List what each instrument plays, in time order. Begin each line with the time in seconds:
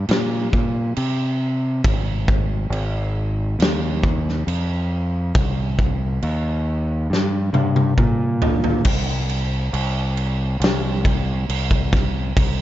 0.09 fingered electric bass A#2, snare, crash
0.52 fingered electric bass A#2, kick
0.96 fingered electric bass C3, crash
1.84 fingered electric bass G#1, kick, crash
2.28 kick
2.70 fingered electric bass G#1, crash
3.59 fingered electric bass D#2, snare, crash
4.03 kick
4.29 snare
4.47 fingered electric bass F2, crash
5.35 fingered electric bass C2, kick, crash
5.79 kick
6.22 fingered electric bass D#2, crash
7.10 fingered electric bass G2, snare
7.53 fingered electric bass G2, high tom
7.76 high tom
7.98 fingered electric bass A#2, kick, mid tom
8.42 floor tom
8.64 floor tom
8.85 fingered electric bass C2, kick, crash
9.29 crash
9.73 fingered electric bass C2, crash
10.17 crash
10.60 fingered electric bass C2, crash
10.64 snare
11.05 kick, crash
11.49 fingered electric bass C2, crash
11.71 kick
11.93 kick, snare, crash
12.36 fingered electric bass C2, kick, crash